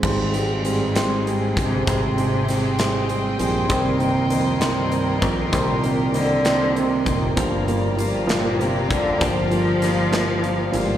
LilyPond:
<<
  \new Staff \with { instrumentName = "String section" } { \time 6/8 \key aes \lydian \tempo 4. = 65 << { <ees'' g'' c'''>2.~ | <ees'' g'' c'''>2.~ | <ees'' g'' c'''>2.~ | <ees'' g'' c'''>2. |
<d'' f'' bes''>2.~ | <d'' f'' bes''>2. | } \\ { aes'2.~ | aes'2. | bes'2.~ | bes'2. |
g'2.~ | g'2. | } >> }
  \new Staff \with { instrumentName = "Steel-string acoustic guitar" } { \time 6/8 \key aes \lydian r2. | r2. | r2. | r2. |
f8 bes8 f'8 bes8 d'8 f'8 | f8 bes8 f'8 bes8 d'8 f'8 | }
  \new Staff \with { instrumentName = "Felt piano" } { \clef bass \time 6/8 \key aes \lydian <g aes c'>8 <g aes c'>8 <g aes c'>8 <g aes c'>8 <g aes c'>8 <g aes c'>8 | <g aes c'>8 <g aes c'>8 <g aes c'>8 <g aes c'>8 <g aes c'>8 <g aes c'>8 | <ees bes c'>8 <ees bes c'>8 <ees bes c'>8 <ees bes c'>8 <ees bes c'>8 <ees bes c'>8 | <ees bes c'>8 <ees bes c'>8 <ees bes c'>8 <ees bes c'>8 <ees bes c'>8 <ees bes c'>8 |
<f g bes>8 <f g bes>8 <f g bes>8 <f g bes>8 <f g bes>8 <f g bes>8 | <f g bes>8 <f g bes>8 <f g bes>8 <f g bes>8 <f g bes>8 <f g bes>8 | }
  \new Staff \with { instrumentName = "Cello" } { \clef bass \time 6/8 \key aes \lydian aes,4 g,8 aes,4 c8 | c2 r8 g,8~ | g,4 f,8 g,4 bes,8 | bes,4 d4 c8 bes,8 |
g,4 g,8 bes,8 c8 d8 | f2~ f8 aes,8 | }
  \new Staff \with { instrumentName = "Fingered electric bass" } { \clef bass \time 6/8 \key aes \lydian aes,,2~ aes,,8 g,,8 | aes,,2~ aes,,8 bes,,8 | c,2~ c,8 bes,,8 | c,2~ c,8 f,,8 |
g,,2~ g,,8 f,,8 | g,,2~ g,,8 g,,8 | }
  \new DrumStaff \with { instrumentName = "Drums" } \drummode { \time 6/8 <cymc bd>8 hh8 hh8 <hh sn>8 hh8 <hh bd>8 | <hh bd>8 hh8 <hh sn>8 <hh sn>8 hh8 hh8 | <hh bd>8 hh8 hh8 <hh sn>8 hh8 <hh bd>8 | <hh bd>8 hh8 hh8 <hh sn>8 hh8 <hh bd>8 |
<hh bd>8 hh8 hh8 <hh sn>8 hh8 <hh bd>8 | <hh bd>8 hh8 <hh sn>8 <hh sn>8 hh8 hh8 | }
>>